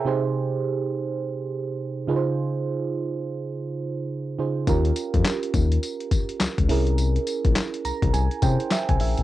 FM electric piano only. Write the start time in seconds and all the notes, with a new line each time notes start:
Already playing: E5
0.05 C3 D#4 G4 G#4 C5
2.07 C#3 D#4 F4 G#4 B4
2.16 C5
4.39 C#3 D#4 F4 G#4 C5
4.67 C#4 F4 G4 A#4
6.69 C#4 E4 G#4 A#4
7.85 A#5
8.14 G#5
8.42 C#4 E4 G#4 C5 G5
8.72 E5
8.89 G#5
9.01 E5